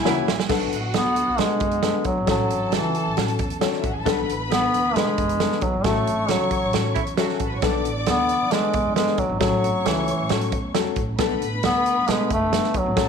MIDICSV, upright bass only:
0, 0, Header, 1, 2, 480
1, 0, Start_track
1, 0, Tempo, 445434
1, 534, Time_signature, 4, 2, 24, 8
1, 14100, End_track
2, 0, Start_track
2, 0, Title_t, "Upright bass"
2, 0, Program_c, 0, 32
2, 63, Note_on_c, 0, 37, 99
2, 248, Note_off_c, 0, 37, 0
2, 307, Note_on_c, 0, 34, 84
2, 396, Note_off_c, 0, 34, 0
2, 536, Note_on_c, 0, 35, 109
2, 723, Note_off_c, 0, 35, 0
2, 783, Note_on_c, 0, 33, 83
2, 967, Note_off_c, 0, 33, 0
2, 1016, Note_on_c, 0, 38, 86
2, 1297, Note_off_c, 0, 38, 0
2, 1378, Note_on_c, 0, 35, 79
2, 1470, Note_off_c, 0, 35, 0
2, 1495, Note_on_c, 0, 47, 97
2, 1682, Note_off_c, 0, 47, 0
2, 1737, Note_on_c, 0, 30, 87
2, 2017, Note_off_c, 0, 30, 0
2, 2212, Note_on_c, 0, 38, 90
2, 2306, Note_off_c, 0, 38, 0
2, 2346, Note_on_c, 0, 32, 83
2, 2435, Note_off_c, 0, 32, 0
2, 2454, Note_on_c, 0, 33, 101
2, 2642, Note_off_c, 0, 33, 0
2, 2702, Note_on_c, 0, 32, 86
2, 2938, Note_on_c, 0, 37, 88
2, 2955, Note_off_c, 0, 32, 0
2, 3219, Note_off_c, 0, 37, 0
2, 3301, Note_on_c, 0, 33, 74
2, 3392, Note_off_c, 0, 33, 0
2, 3418, Note_on_c, 0, 45, 95
2, 3605, Note_off_c, 0, 45, 0
2, 3659, Note_on_c, 0, 40, 82
2, 3939, Note_off_c, 0, 40, 0
2, 4137, Note_on_c, 0, 33, 81
2, 4230, Note_off_c, 0, 33, 0
2, 4260, Note_on_c, 0, 33, 83
2, 4352, Note_off_c, 0, 33, 0
2, 4378, Note_on_c, 0, 35, 101
2, 4565, Note_off_c, 0, 35, 0
2, 4624, Note_on_c, 0, 33, 78
2, 4997, Note_off_c, 0, 33, 0
2, 5098, Note_on_c, 0, 38, 102
2, 5285, Note_off_c, 0, 38, 0
2, 5338, Note_on_c, 0, 47, 90
2, 5526, Note_off_c, 0, 47, 0
2, 5587, Note_on_c, 0, 30, 85
2, 5865, Note_off_c, 0, 30, 0
2, 6059, Note_on_c, 0, 35, 92
2, 6152, Note_off_c, 0, 35, 0
2, 6179, Note_on_c, 0, 32, 83
2, 6272, Note_off_c, 0, 32, 0
2, 6299, Note_on_c, 0, 33, 102
2, 6487, Note_off_c, 0, 33, 0
2, 6546, Note_on_c, 0, 32, 86
2, 6778, Note_on_c, 0, 37, 86
2, 6794, Note_off_c, 0, 32, 0
2, 7061, Note_off_c, 0, 37, 0
2, 7150, Note_on_c, 0, 33, 77
2, 7240, Note_off_c, 0, 33, 0
2, 7268, Note_on_c, 0, 45, 95
2, 7453, Note_off_c, 0, 45, 0
2, 7503, Note_on_c, 0, 40, 77
2, 7783, Note_off_c, 0, 40, 0
2, 7980, Note_on_c, 0, 33, 89
2, 8074, Note_off_c, 0, 33, 0
2, 8106, Note_on_c, 0, 33, 81
2, 8198, Note_off_c, 0, 33, 0
2, 8218, Note_on_c, 0, 35, 100
2, 8461, Note_off_c, 0, 35, 0
2, 8461, Note_on_c, 0, 33, 93
2, 8649, Note_off_c, 0, 33, 0
2, 8704, Note_on_c, 0, 38, 99
2, 8984, Note_off_c, 0, 38, 0
2, 9065, Note_on_c, 0, 35, 80
2, 9251, Note_off_c, 0, 35, 0
2, 9422, Note_on_c, 0, 47, 90
2, 9515, Note_off_c, 0, 47, 0
2, 9542, Note_on_c, 0, 42, 83
2, 9729, Note_off_c, 0, 42, 0
2, 9899, Note_on_c, 0, 35, 80
2, 9993, Note_off_c, 0, 35, 0
2, 10014, Note_on_c, 0, 32, 92
2, 10110, Note_off_c, 0, 32, 0
2, 10140, Note_on_c, 0, 33, 108
2, 10327, Note_off_c, 0, 33, 0
2, 10382, Note_on_c, 0, 32, 88
2, 10568, Note_off_c, 0, 32, 0
2, 10618, Note_on_c, 0, 37, 93
2, 10900, Note_off_c, 0, 37, 0
2, 10986, Note_on_c, 0, 33, 76
2, 11077, Note_off_c, 0, 33, 0
2, 11104, Note_on_c, 0, 45, 94
2, 11289, Note_off_c, 0, 45, 0
2, 11341, Note_on_c, 0, 40, 82
2, 11715, Note_off_c, 0, 40, 0
2, 11816, Note_on_c, 0, 33, 91
2, 12004, Note_off_c, 0, 33, 0
2, 12059, Note_on_c, 0, 35, 105
2, 12245, Note_off_c, 0, 35, 0
2, 12301, Note_on_c, 0, 33, 86
2, 12486, Note_off_c, 0, 33, 0
2, 12539, Note_on_c, 0, 38, 90
2, 12819, Note_off_c, 0, 38, 0
2, 12906, Note_on_c, 0, 35, 80
2, 12995, Note_off_c, 0, 35, 0
2, 13021, Note_on_c, 0, 47, 98
2, 13206, Note_off_c, 0, 47, 0
2, 13263, Note_on_c, 0, 30, 89
2, 13540, Note_off_c, 0, 30, 0
2, 13736, Note_on_c, 0, 38, 96
2, 13828, Note_off_c, 0, 38, 0
2, 13859, Note_on_c, 0, 32, 92
2, 13950, Note_off_c, 0, 32, 0
2, 13979, Note_on_c, 0, 33, 94
2, 14100, Note_off_c, 0, 33, 0
2, 14100, End_track
0, 0, End_of_file